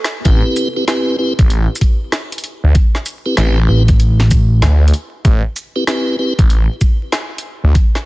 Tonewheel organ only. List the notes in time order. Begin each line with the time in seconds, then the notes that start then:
0.25 C4 E4 G4 B4
0.76 C4 E4 G4 B4
0.88 C4 E4 G4 B4
1.19 C4 E4 G4 B4
3.26 C4 E4 G4 B4
3.37 C4 E4 G4 B4
3.68 C4 E4 G4 B4
5.76 C4 E4 G4 B4
5.87 C4 E4 G4 B4
6.19 C4 E4 G4 B4